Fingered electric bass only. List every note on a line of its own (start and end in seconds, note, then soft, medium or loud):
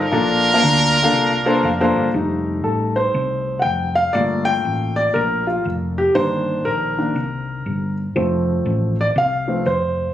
0.12 0.55 A#1 loud
0.63 1.06 D2 medium
1.13 1.56 C2 medium
1.63 1.91 F1 medium
1.96 2.11 G1 medium
2.14 2.64 F1 loud
2.64 3.07 A1 medium
3.14 3.57 C2 medium
3.65 4.07 F1 medium
4.15 4.58 G1 loud
4.65 5.08 A1 medium
5.15 5.58 A#1 loud
5.65 6.08 F1 medium
6.15 6.58 G1 loud
6.65 7.08 A#1 medium
7.16 7.58 C2 medium
7.66 8.09 G1 medium
8.16 8.59 F1 loud
8.66 9.08 A1 medium
9.16 9.67 C2 medium
9.66 10.09 F1 medium